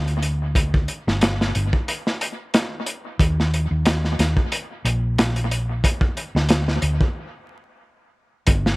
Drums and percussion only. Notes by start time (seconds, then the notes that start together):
0.08 closed hi-hat
0.23 closed hi-hat
0.55 kick, closed hi-hat
0.74 kick
0.88 closed hi-hat
1.08 snare
1.21 snare, closed hi-hat
1.41 snare
1.55 closed hi-hat
1.73 kick
1.88 closed hi-hat
2.07 snare
2.21 closed hi-hat
2.54 snare, closed hi-hat
2.86 closed hi-hat
3.19 kick, closed hi-hat
3.40 snare
3.54 closed hi-hat
3.86 snare, closed hi-hat
4.05 snare
4.19 snare, closed hi-hat
4.37 kick
4.52 closed hi-hat
4.85 closed hi-hat
5.18 snare, closed hi-hat
5.36 closed hi-hat
5.51 closed hi-hat
5.84 kick, closed hi-hat
6.01 kick
6.17 closed hi-hat
6.36 snare
6.49 snare, closed hi-hat
6.68 snare
6.82 closed hi-hat
7.01 kick
8.47 kick, closed hi-hat
8.66 snare